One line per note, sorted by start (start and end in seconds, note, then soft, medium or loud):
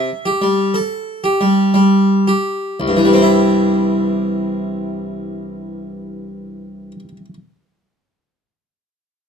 0.00 0.28 E5 medium
0.26 0.77 G4 soft
0.42 0.76 G3 soft
0.74 1.24 A4 soft
1.24 1.77 G4 soft
1.41 1.73 G3 soft
1.74 2.29 G3 soft
2.27 2.80 G4 soft
2.80 6.91 C2 soft
2.88 6.99 G2 soft
2.97 7.08 E3 soft
3.05 7.17 G3 soft
3.13 7.25 C4 soft
3.22 7.34 E4 soft